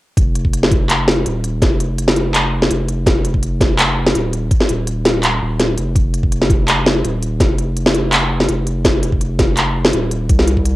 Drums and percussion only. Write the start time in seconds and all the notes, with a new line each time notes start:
0.17 kick, closed hi-hat
0.36 closed hi-hat
0.45 kick
0.54 closed hi-hat
0.63 snare
0.71 kick, closed hi-hat
0.90 clap, closed hi-hat
1.08 snare
1.26 closed hi-hat
1.44 closed hi-hat
1.62 kick, snare, closed hi-hat
1.80 closed hi-hat
1.98 closed hi-hat
2.08 snare
2.16 closed hi-hat
2.34 clap, closed hi-hat
2.62 snare
2.71 closed hi-hat
2.88 closed hi-hat
3.06 kick, snare, closed hi-hat
3.25 closed hi-hat
3.34 kick
3.43 closed hi-hat
3.61 kick, snare, closed hi-hat
3.79 clap, closed hi-hat
4.06 snare
4.15 closed hi-hat
4.33 closed hi-hat
4.51 kick, closed hi-hat
4.60 snare
4.69 closed hi-hat
4.87 closed hi-hat
5.05 snare, closed hi-hat
5.23 clap, closed hi-hat
5.60 snare, closed hi-hat
5.78 closed hi-hat
5.96 kick, closed hi-hat
6.14 closed hi-hat
6.23 kick
6.32 closed hi-hat
6.42 snare
6.50 kick, closed hi-hat
6.68 clap, closed hi-hat
6.86 snare
7.05 closed hi-hat
7.23 closed hi-hat
7.40 kick, snare, closed hi-hat
7.58 closed hi-hat
7.77 closed hi-hat
7.86 snare
7.94 closed hi-hat
8.12 clap, closed hi-hat
8.40 snare
8.49 closed hi-hat
8.67 closed hi-hat
8.85 kick, snare, closed hi-hat
9.03 closed hi-hat
9.12 kick
9.21 closed hi-hat
9.39 kick, snare, closed hi-hat
9.57 clap, closed hi-hat
9.85 snare
9.93 closed hi-hat
10.11 closed hi-hat
10.29 kick, closed hi-hat
10.39 snare
10.48 closed hi-hat
10.57 kick
10.66 closed hi-hat